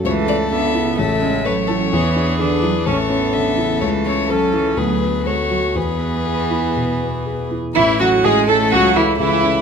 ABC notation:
X:1
M:4/4
L:1/8
Q:1/4=126
K:A
V:1 name="Violin"
c d e2 e2 c2- | c2 B2 c2 e2 | c c A2 B2 c2 | B6- B z |
E F G A F E E2 |]
V:2 name="Violin"
A4 A2 B A | G G3 A4- | A2 A2 G2 F2 | G6- G z |
E F G A F E E2 |]
V:3 name="Grand piano"
C,, C A E A,,, C A E | E,, D G E A,,, C A E | C,, C A E D,, B, A F | E,, B, G E B,, B, G E |
[A,,,A,,] [CEA] [A,,,A,,] [CEA] [C,,C,] [CEA] [C,,C,] [CEA] |]
V:4 name="Viola"
A,2 B,2 A, G, A,2 | B,2 D2 C B,3 | A,2 C2 B, A,3 | B,6- B, z |
E, F, G, A, F, E, E,2 |]
V:5 name="Cello" clef=bass
E,2 D, C,3 F,2 | E,2 D, F, E,2 D, C, | E,2 F, E, F,2 G, F, | E,6- E, z |
E F G A F E E2 |]